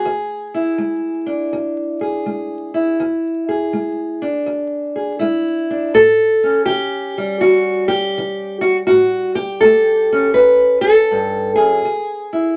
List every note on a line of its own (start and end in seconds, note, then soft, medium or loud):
0.00 1.53 G#4 medium
0.05 0.74 E2 medium
0.54 2.74 E4 soft
0.78 1.47 G#3 medium
1.26 2.97 D4 soft
1.53 2.21 E2 medium
2.01 2.97 G#4 soft
2.26 2.95 G#3 medium
2.74 4.25 E4 soft
3.00 3.68 E2 medium
3.49 4.94 G#4 soft
3.73 4.42 G#3 medium
4.22 5.69 D4 soft
4.46 5.15 E2 medium
4.96 5.19 G#4 soft
5.19 5.89 G#3 medium
5.19 5.94 E4 medium
5.70 5.92 D4 soft
5.94 6.63 A2 medium
5.94 6.65 A4 medium
6.43 8.86 C#4 soft
6.66 7.37 E3 medium
6.66 7.40 G4 medium
7.18 10.11 G3 soft
7.41 8.11 E2 medium
7.41 7.88 F#4 medium
7.88 8.61 G4 medium
8.18 8.85 E3 medium
8.61 8.76 F#4 medium
8.87 9.58 A2 medium
8.87 9.35 F#4 medium
9.35 10.35 G4 medium
9.61 10.32 A3 medium
9.61 10.34 A4 medium
10.12 11.81 C#4 soft
10.34 10.81 B4 medium
10.38 11.06 E2 medium
10.81 11.55 A4 loud
11.11 11.57 G2 medium
11.56 11.84 F#2 medium
11.56 12.57 G#4 medium
11.85 12.53 E2 medium
12.33 12.57 E4 soft